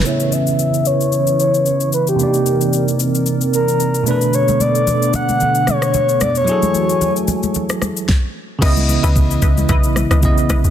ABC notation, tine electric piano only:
X:1
M:4/4
L:1/8
Q:"Swing 16ths" 1/4=112
K:C#phr
V:1 name="Tine electric piano"
[C,B,Ee]8 | [=C,_B,D_Ed]6- [C,B,DEd] [=B,,A,DB]- | [B,,A,DB]6- [B,,A,DB] z | [F,EGA]6 z2 |
[C,B,E^d]6 [C,B,Ed]2 |]